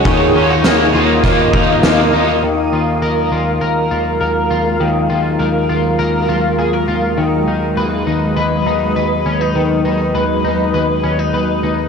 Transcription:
<<
  \new Staff \with { instrumentName = "Ambient pad" } { \time 4/4 \key ges \major \tempo 4 = 101 << { <f'' ees'''>1 | <bes' f''>1~ | <bes' f''>1 | <ces'' ees''>1~ |
<ces'' ees''>1 | } \\ { <bes' ees''>1 | <ges aes>1~ | <ges aes>1~ | <ges aes>1~ |
<ges aes>1 | } >> }
  \new Staff \with { instrumentName = "Clean electric guitar" } { \time 4/4 \key ges \major ees8 des'16 ees'16 bes8 f'8 bes8 ees'8 bes8 ees'8 | ees8 f'8 bes'8 f'8 bes'8 f'8 bes'8 f'8 | ees8 f'8 bes'8 f'8 bes'8 f'8 aes'16 bes'16 f'8 | ees8 ees'8 ces''8 ees'8 ces''8 ees'8 ces''8 des'16 ees'16 |
ees8 ees'8 ces''8 ees'8 ces''8 des'16 ees'16 ces''8 ees'8 | }
  \new Staff \with { instrumentName = "Overdriven electric guitar" } { \time 4/4 \key ges \major <ees bes ees' f'>8 <bes ees' f'>8 <ees bes ees' f'>8 <bes ees' f'>8 <ees bes ees' f'>8 <bes ees' f'>8 <ees bes ees' f'>8 <bes ees' f'>8 | r1 | r1 | r1 |
r1 | }
  \new Staff \with { instrumentName = "Picked electric bass" } { \clef bass \time 4/4 \key ges \major ees,8 ees,8 ees,8 ees,8 ees,8 ees,8 ees,8 ees,8 | ees,8 ees,8 ees,8 ees,8 ees,8 ees,8 ees,8 ees,8 | ees,8 ees,8 ees,8 ees,8 ees,8 ees,8 ees,8 ees,8 | ees,8 ees,8 ees,8 ees,8 ees,8 ees,8 ees,8 ees,8 |
ees,8 ees,8 ees,8 ees,8 ees,8 ees,8 ees,8 ees,8 | }
  \new DrumStaff \with { instrumentName = "Drums" } \drummode { \time 4/4 <hh bd>4 <hh sn tamb>4 <hh bd>8 bd8 <hh sn tamb>4 | r4 r4 r4 r4 | r4 r4 r4 r4 | r4 r4 r4 r4 |
r4 r4 r4 r4 | }
>>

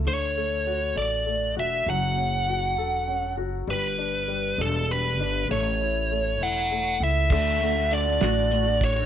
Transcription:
<<
  \new Staff \with { instrumentName = "Lead electric guitar" } { \time 6/8 \key d \major \tempo 4. = 66 cis''4. d''4 e''8 | fis''2~ fis''8 r8 | b'4. a'8 b'4 | cis''4. fis''4 e''8 |
e''4 d''4. cis''8 | }
  \new Staff \with { instrumentName = "Clean electric guitar" } { \time 6/8 \key d \major r2. | r2. | r2. | r2. |
<d a d' fis'>8 <d a d' fis'>16 <a d' fis'>8 <a d' fis'>16 <d a d' fis'>8 <d a d' fis'>16 <d' fis'>8 <a d' fis'>16 | }
  \new Staff \with { instrumentName = "Upright piano" } { \time 6/8 \key d \major d8 a8 fis'8 a'8 a8 fis'8 | fis8 cis'8 fis'8 a'8 cis'8 fis'8 | g8 d'8 g8 d'8 g8 d'8 | a8 e'8 a8 e'8 a8 e'8 |
d8 a8 d'8 fis'4. | }
  \new Staff \with { instrumentName = "Upright bass" } { \clef bass \time 6/8 \key d \major d,4. a,,4 e,,8 | fis,,4. e,,4 fis,,8 | g,,4. e,,4 g,,8 | a,,4. e,,4 cis,8 |
d,4. a,,4. | }
  \new DrumStaff \with { instrumentName = "Drums" } \drummode { \time 6/8 r4. r4. | r4. r4. | r4. r4. | r4. r4. |
<cymc bd>8 hh8 hh8 <hh sn>8 hh8 <hh bd>8 | }
>>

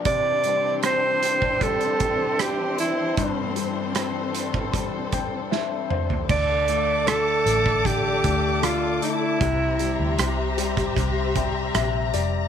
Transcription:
<<
  \new Staff \with { instrumentName = "String section" } { \time 4/4 \key c \mixolydian \tempo 4 = 77 << { <e c' d' c''>1~ | <e c' d' c''>1 | <a' d'' d'''>1 | <g' c'' bes''>1 | } \\ { g'1 | a'1 | a''1 | e''1 | } >> }
  \new Staff \with { instrumentName = "Alto saxophone" } { \time 4/4 \key c \mixolydian d''4 c''4 a'4 g'8 e'8~ | e'8 r2. r8 | d''4 a'4 g'4 f'8 e'8~ | e'4. r2 r8 | }
  \new Staff \with { instrumentName = "Grand piano" } { \time 4/4 \key c \mixolydian r1 | r2 r8 g''8 e''8 c''8 | r1 | r2 r8 g''8 e''8 d''8 | }
  \new Staff \with { instrumentName = "Grand piano" } { \clef bass \time 4/4 \key c \mixolydian c8 g8 c'4 g2 | g,8 g8 c'4 g2 | d8 a8 d8 a8 d8 a8 d8 a8 | c8 g8 c8 g8 c8 g8 c8 g8 | }
  \new Staff \with { instrumentName = "Fingered electric bass" } { \clef bass \time 4/4 \key c \mixolydian r1 | r1 | d,4. a,,4 d,4 r8 | c,8. d,16 c,4 c,4 bes,,8 f,,8 | }
  \new DrumStaff \with { instrumentName = "Drums" } \drummode { \time 4/4 <hh bd>8 hh8 <hh ss>8 hh16 bd16 <hh bd>16 hh16 <hh bd>8 <hh ss>8 hh8 | <hh bd>8 hh8 <hh ss>8 hh16 bd16 <hh bd>8 <hh bd>8 sn8 toml16 tomfh16 | <cymc bd>8 hh8 <hh ss>8 hh16 <bd ss>16 <hh bd>8 <hh bd>8 <hh ss>8 hh8 | <hh bd>8 hh8 <hh ss>8 hh16 <hh bd ss>16 <hh bd>8 <hh bd>8 <hh ss>8 hh8 | }
>>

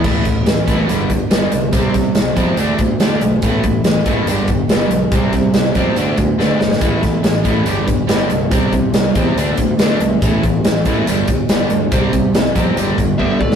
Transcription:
<<
  \new Staff \with { instrumentName = "Lead electric guitar" } { \time 4/4 \key a \minor \tempo 4 = 141 r1 | r1 | r1 | r1 |
r1 | r1 | r1 | r2. e''8 d''8 | }
  \new Staff \with { instrumentName = "Lead electric guitar" } { \time 4/4 \key a \minor r1 | r1 | r1 | r1 |
r1 | r1 | r1 | r2. b8 a8 | }
  \new Staff \with { instrumentName = "Overdriven electric guitar" } { \clef bass \time 4/4 \key a \minor <a, e a>8 <a, e>8 <a, e>8 <a, e a>8 <g, d g>8 <g, d>8 <g, d g>8 <g, d>8 | <c g c'>8 <c g>8 <c g>8 <c g c'>8 <d a d'>8 <d a>8 <d a d'>8 <d a>8 | <a, e a>8 <a, e>8 <a, e>8 <a, e a>8 <g, d g>8 <g, d>8 <g, d g>8 <g, d>8 | <c g c'>8 <c g>8 <c g>8 <c g c'>8 <d a d'>8 <d a>8 <d a d'>8 <d a>8 |
<a, e a>8 <a, e>8 <a, e>8 <a, e a>8 <g, d g>8 <g, d>8 <g, d g>8 <g, d>8 | <c g c'>8 <c g>8 <c g>8 <c g c'>8 <d a d'>8 <d a>8 <d a d'>8 <d a>8 | <a, e a>8 <a, e>8 <a, e>8 <a, e a>8 <g, d g>8 <g, d>8 <g, d g>8 <g, d>8 | <c g c'>8 <c g>8 <c g>8 <c g c'>8 <g, d g>8 <g, d>8 <g, d g>8 <g, d>8 | }
  \new Staff \with { instrumentName = "Overdriven electric guitar" } { \clef bass \time 4/4 \key a \minor <a, e a>8 <a, e>8 <a, e>8 <a, e a>8 <g, d g>8 <g, d>8 <g, d g>8 <g, d>8 | <c g c'>8 <c g>8 <c g>8 <c g c'>8 <d a d'>8 <d a>8 <d a d'>8 <d a>8 | <a, e a>8 <a, e>8 <a, e>8 <a, e a>8 <g, d g>8 <g, d>8 <g, d g>8 <g, d>8 | <c g c'>8 <c g>8 <c g>8 <c g c'>8 <d a d'>8 <d a>8 <d a d'>8 <d a>8 |
<a, e a>8 <a, e>8 <a, e>8 <a, e a>8 <g, d g>8 <g, d>8 <g, d g>8 <g, d>8 | <c g c'>8 <c g>8 <c g>8 <c g c'>8 <d a d'>8 <d a>8 <d a d'>8 <d a>8 | <a, e a>8 <a, e>8 <a, e>8 <a, e a>8 <g, d g>8 <g, d>8 <g, d g>8 <g, d>8 | <c g c'>8 <c g>8 <c g>8 <c g c'>8 <g, d g>8 <g, d>8 <g, d g>8 <g, d>8 | }
  \new Staff \with { instrumentName = "Picked electric bass" } { \clef bass \time 4/4 \key a \minor a,,8 a,,8 a,,8 a,,8 g,,4 g,,8 c,8 | c,8 c8 c,8 f,8 d,8 d,8 d,8 b,,8 | a,,8 a,,8 a,,8 a,,8 g,,4 g,,8 b,,8 | c,8 c8 c,8 f,8 d,8 d,8 d,8 g,,8 |
a,,8 a,,8 a,,8 a,,8 g,,4 g,,8 c,8 | c,8 c8 c,8 e,8 d,8 d,8 d,8 c,8 | a,,8 a,,8 a,,8 a,,8 g,,4 g,,8 d,8 | c,8 c8 c,8 f,8 g,,8 g,,8 g,,8 gis,,8 | }
  \new DrumStaff \with { instrumentName = "Drums" } \drummode { \time 4/4 <cymc bd>8 <hh bd sn>8 <hh sn>8 <hh bd>8 hh8 <hh bd>8 <hh sn>8 hh8 | <hh bd>8 <hh bd sn>8 <hh sn>8 <hh bd>8 hh8 <hh bd>8 <hh sn>8 hh8 | <hh bd>8 <hh bd>8 <hh sn>8 <hh bd>8 hh8 <hh bd>8 <hh sn>8 hh8 | <hh bd>8 <hh bd sn>8 <hh sn>8 <hh bd>8 hh8 <hh bd>8 sn8 sn16 sn16 |
<hh bd>8 <hh bd sn>8 <hh sn>8 <hh bd>8 hh8 <hh bd>8 <hh sn>8 hh8 | <hh bd>8 <hh bd>8 <hh sn>8 <hh bd>8 hh8 <hh bd>8 <hh sn>8 hh8 | <hh bd>8 <hh bd>8 <hh sn>8 <hh bd>8 hh8 <hh bd>8 <hh sn>8 hh8 | <hh bd>8 <hh bd>8 <hh sn>8 <hh bd>8 hh8 <hh bd>8 bd8 bd16 sn16 | }
>>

